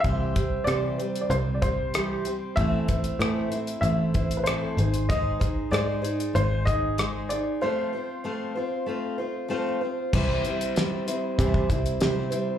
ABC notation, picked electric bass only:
X:1
M:4/4
L:1/8
Q:1/4=95
K:C
V:1 name="Picked electric bass" clef=bass
C,,2 C,2 C,,4 | A,,,2 A,,2 A,,,3 _A,,,- | _A,,,2 _A,,2 A,,,4 | z8 |
C,, z3 C, C,, C,2 |]